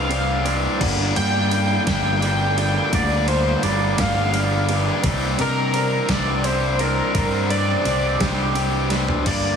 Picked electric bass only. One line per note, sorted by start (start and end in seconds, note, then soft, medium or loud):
0.00 0.66 C2 medium
0.81 1.11 G1 medium
1.17 1.77 G2 medium
1.87 2.77 G1 loud
2.92 3.53 D2 loud
3.63 3.93 G1 medium
3.99 4.89 G1 medium
5.04 5.34 C2 loud
5.40 6.00 C3 medium
6.09 6.99 C2 loud
7.15 7.75 G2 loud
7.85 8.15 C2 medium
8.20 9.11 C2 loud
9.25 9.56 G1 loud